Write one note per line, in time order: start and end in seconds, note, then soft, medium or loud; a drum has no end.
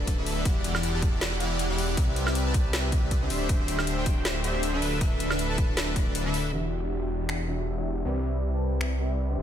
0.00 0.44 D1 loud
0.00 0.15 D3 medium
0.00 0.15 D4 medium
0.00 0.15 A4 medium
0.00 0.15 B4 medium
0.00 0.15 D5 medium
0.07 kick medium
0.07 closed hi-hat medium
0.18 0.43 D3 medium
0.18 0.43 D4 medium
0.18 0.43 A4 medium
0.18 0.43 B4 medium
0.18 0.43 E5 medium
0.26 open hi-hat medium
0.45 1.96 E1 medium
0.45 0.72 E3 loud
0.45 0.72 E4 medium
0.45 0.72 G4 medium
0.45 0.72 D5 medium
0.45 0.72 F#5 loud
0.45 kick loud
0.45 closed hi-hat medium
0.64 closed hi-hat medium
0.75 0.91 E3 medium
0.75 0.91 E4 medium
0.75 0.91 G4 medium
0.75 0.91 D5 medium
0.75 0.91 F#5 loud
0.75 snare soft
0.75 high woodblock medium
0.83 closed hi-hat medium
0.94 1.19 E3 medium
0.94 1.19 E4 medium
0.94 1.19 G4 medium
0.94 1.19 D5 medium
0.94 1.19 A5 loud
1.02 kick loud
1.02 closed hi-hat medium
1.21 1.31 E3 loud
1.21 1.31 E4 medium
1.21 1.31 G4 medium
1.21 1.31 D5 medium
1.21 1.31 F#5 loud
1.21 snare loud
1.21 closed hi-hat medium
1.40 1.67 E3 medium
1.40 1.67 E4 medium
1.40 1.67 G4 medium
1.40 1.67 D5 medium
1.40 1.67 F#5 medium
1.40 closed hi-hat medium
1.59 closed hi-hat medium
1.70 1.95 E3 medium
1.70 1.95 E4 medium
1.70 1.95 G4 medium
1.70 1.95 D5 medium
1.70 1.95 F#5 loud
1.78 open hi-hat medium
1.97 3.29 C2 medium
1.97 2.24 C4 loud
1.97 2.24 G4 medium
1.97 2.24 B4 medium
1.97 2.24 D5 medium
1.97 2.24 E5 loud
1.97 kick loud
1.97 closed hi-hat medium
2.16 closed hi-hat medium
2.27 2.43 C4 medium
2.27 2.43 G4 medium
2.27 2.43 B4 medium
2.27 2.43 D5 medium
2.27 2.43 E5 loud
2.27 snare soft
2.27 high woodblock medium
2.35 closed hi-hat medium
2.46 2.71 C4 medium
2.46 2.71 G4 medium
2.46 2.71 B4 medium
2.46 2.71 D5 medium
2.46 2.71 A5 loud
2.54 kick loud
2.54 closed hi-hat medium
2.73 2.83 C4 loud
2.73 2.83 G4 medium
2.73 2.83 B4 medium
2.73 2.83 D5 medium
2.73 2.83 E5 loud
2.73 snare loud
2.73 closed hi-hat medium
2.92 3.19 C4 medium
2.92 3.19 G4 medium
2.92 3.19 B4 medium
2.92 3.19 D5 medium
2.92 3.19 E5 medium
2.92 kick loud
2.92 closed hi-hat medium
3.11 kick medium
3.11 closed hi-hat medium
3.22 3.47 D3 medium
3.22 3.47 D4 medium
3.22 3.47 G4 medium
3.22 3.47 C5 medium
3.22 3.47 E5 loud
3.30 4.80 D1 medium
3.30 open hi-hat medium
3.49 3.76 D3 loud
3.49 3.76 D4 medium
3.49 3.76 G4 medium
3.49 3.76 C5 medium
3.49 3.76 E5 loud
3.49 kick loud
3.49 closed hi-hat medium
3.68 closed hi-hat medium
3.79 3.95 D3 medium
3.79 3.95 D4 medium
3.79 3.95 G4 medium
3.79 3.95 C5 medium
3.79 3.95 E5 loud
3.79 snare soft
3.79 high woodblock medium
3.87 closed hi-hat medium
3.98 4.23 D3 medium
3.98 4.23 D4 medium
3.98 4.23 G4 medium
3.98 4.23 C5 medium
3.98 4.23 G5 medium
4.06 kick loud
4.06 closed hi-hat medium
4.25 4.35 D3 loud
4.25 4.35 D4 medium
4.25 4.35 G4 medium
4.25 4.35 C5 medium
4.25 4.35 E5 loud
4.25 snare loud
4.25 closed hi-hat medium
4.44 4.71 D3 medium
4.44 4.71 D4 medium
4.44 4.71 G4 medium
4.44 4.71 C5 medium
4.44 4.71 E5 loud
4.44 closed hi-hat medium
4.63 closed hi-hat medium
4.73 4.99 D3 medium
4.73 4.99 D4 medium
4.73 4.99 A4 medium
4.73 4.99 B4 medium
4.73 4.99 E5 loud
4.82 6.51 D1 medium
4.82 open hi-hat medium
5.01 5.28 D3 loud
5.01 5.28 D4 medium
5.01 5.28 A4 medium
5.01 5.28 B4 medium
5.01 5.28 E5 loud
5.01 kick loud
5.01 closed hi-hat medium
5.20 closed hi-hat medium
5.30 5.47 D3 medium
5.30 5.47 D4 medium
5.30 5.47 A4 medium
5.30 5.47 B4 medium
5.30 5.47 E5 loud
5.30 snare soft
5.30 high woodblock medium
5.39 closed hi-hat medium
5.49 5.75 D3 medium
5.49 5.75 D4 medium
5.49 5.75 A4 medium
5.49 5.75 B4 medium
5.49 5.75 A5 loud
5.58 kick loud
5.58 closed hi-hat medium
5.77 5.87 D3 loud
5.77 5.87 D4 medium
5.77 5.87 A4 medium
5.77 5.87 B4 medium
5.77 5.87 E5 loud
5.77 snare loud
5.77 closed hi-hat medium
5.96 6.23 D3 medium
5.96 6.23 D4 medium
5.96 6.23 A4 medium
5.96 6.23 B4 medium
5.96 6.23 D5 medium
5.96 kick loud
5.96 closed hi-hat medium
6.15 closed hi-hat medium
6.25 6.51 D3 medium
6.25 6.51 D4 medium
6.25 6.51 A4 medium
6.25 6.51 B4 medium
6.25 6.51 E5 medium
6.34 open hi-hat medium
6.53 8.03 E1 medium
6.53 6.80 E3 medium
6.53 6.80 D4 medium
6.53 6.80 F#4 medium
6.53 6.80 G4 medium
6.53 6.80 E5 loud
6.82 6.99 E3 medium
6.82 6.99 D4 medium
6.82 6.99 F#4 medium
6.82 6.99 G4 medium
6.82 6.99 E5 medium
7.01 7.27 E3 medium
7.01 7.27 D4 medium
7.01 7.27 F#4 medium
7.01 7.27 G4 medium
7.01 7.27 G5 medium
7.29 7.38 E3 medium
7.29 7.38 D4 medium
7.29 7.38 F#4 medium
7.29 7.38 G4 medium
7.29 7.38 E5 loud
7.29 finger snap medium
7.48 7.75 E3 medium
7.48 7.75 D4 medium
7.48 7.75 F#4 medium
7.48 7.75 G4 medium
7.48 7.75 E5 medium
7.77 8.03 E3 medium
7.77 8.03 D4 medium
7.77 8.03 F#4 medium
7.77 8.03 G4 medium
7.77 8.03 E5 medium
8.05 9.36 C2 medium
8.05 8.32 C4 medium
8.05 8.32 G4 medium
8.05 8.32 B4 medium
8.05 8.32 D5 medium
8.05 8.32 E5 loud
8.34 8.51 C4 medium
8.34 8.51 G4 medium
8.34 8.51 B4 medium
8.34 8.51 D5 medium
8.34 8.51 E5 medium
8.53 8.79 C4 medium
8.53 8.79 G4 medium
8.53 8.79 B4 medium
8.53 8.79 D5 medium
8.53 8.79 A5 medium
8.81 8.90 C4 medium
8.81 8.90 G4 medium
8.81 8.90 B4 medium
8.81 8.90 D5 medium
8.81 8.90 E5 loud
8.81 finger snap medium
9.00 9.27 C4 medium
9.00 9.27 G4 medium
9.00 9.27 B4 medium
9.00 9.27 D5 medium
9.00 9.27 E5 medium
9.29 9.42 D3 medium
9.29 9.42 D4 medium
9.29 9.42 G4 medium
9.29 9.42 C5 medium
9.29 9.42 E5 medium
9.38 9.42 D1 medium